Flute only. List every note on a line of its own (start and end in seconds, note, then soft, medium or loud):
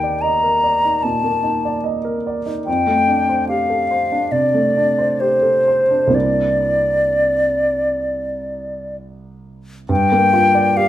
0.00 0.23 G5 medium
0.22 1.04 A#5 medium
1.03 1.85 A5 medium
2.66 3.45 G5 medium
3.49 4.33 F5 medium
4.32 5.22 D5 medium
5.20 6.16 C5 medium
6.15 8.96 D5 medium
9.90 10.78 G5 loud
10.77 10.88 F5 medium